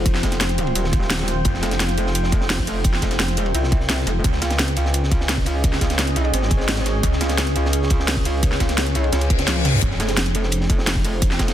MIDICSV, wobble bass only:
0, 0, Header, 1, 2, 480
1, 0, Start_track
1, 0, Key_signature, -4, "minor"
1, 0, Tempo, 348837
1, 78, Time_signature, 4, 2, 24, 8
1, 15874, End_track
2, 0, Start_track
2, 0, Title_t, "Wobble bass"
2, 0, Program_c, 0, 39
2, 0, Note_on_c, 0, 29, 93
2, 299, Note_off_c, 0, 29, 0
2, 318, Note_on_c, 0, 29, 97
2, 1019, Note_off_c, 0, 29, 0
2, 1038, Note_on_c, 0, 27, 99
2, 1979, Note_off_c, 0, 27, 0
2, 2238, Note_on_c, 0, 29, 96
2, 4139, Note_off_c, 0, 29, 0
2, 4157, Note_on_c, 0, 29, 94
2, 4858, Note_off_c, 0, 29, 0
2, 4877, Note_on_c, 0, 36, 98
2, 5579, Note_off_c, 0, 36, 0
2, 5597, Note_on_c, 0, 29, 99
2, 5819, Note_off_c, 0, 29, 0
2, 6078, Note_on_c, 0, 37, 96
2, 7979, Note_off_c, 0, 37, 0
2, 7997, Note_on_c, 0, 37, 94
2, 8699, Note_off_c, 0, 37, 0
2, 8718, Note_on_c, 0, 32, 97
2, 9659, Note_off_c, 0, 32, 0
2, 9918, Note_on_c, 0, 37, 92
2, 11819, Note_off_c, 0, 37, 0
2, 11838, Note_on_c, 0, 37, 97
2, 12539, Note_off_c, 0, 37, 0
2, 12559, Note_on_c, 0, 37, 96
2, 13019, Note_off_c, 0, 37, 0
2, 13038, Note_on_c, 0, 37, 97
2, 13499, Note_off_c, 0, 37, 0
2, 13758, Note_on_c, 0, 29, 98
2, 15659, Note_off_c, 0, 29, 0
2, 15677, Note_on_c, 0, 29, 96
2, 15874, Note_off_c, 0, 29, 0
2, 15874, End_track
0, 0, End_of_file